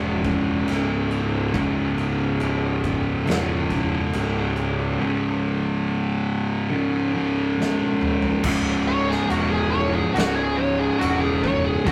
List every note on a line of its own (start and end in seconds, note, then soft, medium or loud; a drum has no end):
0.00 0.64 E1 loud
0.00 0.28 C#2 medium
0.00 1.54 C#2 medium
0.00 0.24 G#2 medium
0.00 1.52 G#2 medium
0.00 0.24 C#3 loud
0.00 1.56 C#3 medium
0.24 0.66 G#2 medium
0.24 0.71 C#3 medium
0.24 kick medium
0.24 crash medium
0.28 0.67 C#2 medium
0.68 1.50 C#1 medium
0.68 1.54 C#2 medium
0.68 1.53 G#2 medium
0.68 1.57 C#3 medium
0.68 snare soft
0.68 crash medium
1.11 crash soft
1.54 2.37 C#1 medium
1.54 3.73 C#2 medium
1.54 3.69 G#2 loud
1.54 3.70 C#3 loud
1.54 kick loud
1.54 crash medium
1.98 crash medium
2.40 3.23 C#1 medium
2.40 crash medium
2.84 kick medium
2.84 crash medium
3.26 4.09 E1 loud
3.26 4.99 C#2 medium
3.26 4.98 G#2 medium
3.26 5.01 C#3 medium
3.26 snare loud
3.26 crash medium
3.70 4.13 C#2 medium
3.70 4.12 G#2 medium
3.70 4.16 C#3 medium
3.70 kick medium
3.70 crash medium
4.13 4.95 C#1 loud
4.13 4.98 C#2 medium
4.13 4.98 G#2 medium
4.13 crash medium
4.17 5.02 C#3 medium
4.56 crash medium
4.99 7.12 C#2 medium
4.99 7.13 G#2 medium
4.99 7.14 C#3 loud
6.70 8.41 C#2 medium
6.70 8.41 G#2 medium
6.70 8.42 C#3 medium
7.15 7.57 C#2 medium
7.15 7.56 G#2 medium
7.15 7.55 C#3 medium
7.58 8.42 C#2 medium
7.58 8.42 G#2 medium
7.58 8.43 C#3 medium
7.58 snare medium
7.79 high tom medium
8.01 mid tom medium
8.22 floor tom medium
8.43 9.17 C#1 loud
8.43 11.85 C#2 medium
8.43 11.85 G#2 loud
8.43 kick loud
8.43 crash loud
8.43 crash medium
8.48 11.89 C#3 loud
8.88 9.08 C#5 loud
9.09 9.29 G#4 medium
9.09 snare soft
9.29 10.02 E1 medium
9.29 9.49 F#4 medium
9.29 crash medium
9.50 9.71 G#4 medium
9.70 9.92 C#5 loud
9.93 10.13 G#4 medium
10.13 10.88 C#1 loud
10.13 10.35 F#4 medium
10.13 crash medium
10.18 snare loud
10.36 10.57 G#4 medium
10.56 10.78 C#5 loud
10.78 10.99 G#4 medium
11.00 11.74 E1 loud
11.00 11.21 F#4 medium
11.00 crash medium
11.21 11.43 G#4 medium
11.43 11.64 C#5 medium
11.43 kick medium
11.64 11.86 G#4 medium
11.85 11.92 C#1 loud
11.85 11.92 C#2 loud
11.85 11.92 G#2 loud
11.85 11.92 C#3 loud
11.85 11.92 F#4 medium
11.85 kick loud
11.85 crash medium